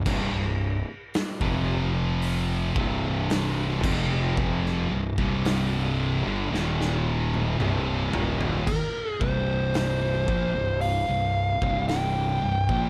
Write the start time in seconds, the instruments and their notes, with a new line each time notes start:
0.06 fingered electric bass C1, distorted electric guitar C2 G2, kick, crash
0.33 fingered electric bass C1, distorted electric guitar C2 G2
1.14 snare, open hi-hat
1.40 fingered electric bass F1, distorted electric guitar F2 C3 F3, kick
2.22 open hi-hat
2.76 fingered electric bass C1, distorted electric guitar C2 G2 C3, kick
3.30 snare, open hi-hat
3.83 fingered electric bass F1, distorted electric guitar F2 C3 F3, kick, crash
4.37 kick
4.66 snare
4.91 fingered electric bass C1, distorted electric guitar C2 G2
5.17 fingered electric bass C1, distorted electric guitar C2 G2 C3, kick
5.45 snare, open hi-hat
6.25 fingered electric bass G1, distorted electric guitar G2 D3
6.52 fingered electric bass D#1, distorted electric guitar D#2 A#2 D#3, snare
6.81 snare
7.34 high tom
7.59 fingered electric bass C1, distorted electric guitar C2 G2 C3, mid tom
8.13 fingered electric bass D#1, distorted electric guitar D#2 A#2 D#3, floor tom
8.41 floor tom
8.67 lead electric guitar A#4, kick, crash
9.11 lead electric guitar G#4
9.20 fingered electric bass C1, distorted electric guitar C2 G2 C3, lead electric guitar C5, kick
9.74 snare, open hi-hat
10.28 fingered electric bass A#1, distorted electric guitar A#2 F3, kick
10.54 fingered electric bass C1, distorted electric guitar C2 G2
10.81 lead electric guitar F5, open hi-hat
11.09 fingered electric bass C1, distorted electric guitar C2 G2
11.61 fingered electric bass C1, distorted electric guitar C2 G2 C3, kick
11.88 lead electric guitar G5, snare, open hi-hat
12.43 fingered electric bass C1, distorted electric guitar C2 G2
12.69 fingered electric bass A#1, distorted electric guitar A#2 F3 A#3, kick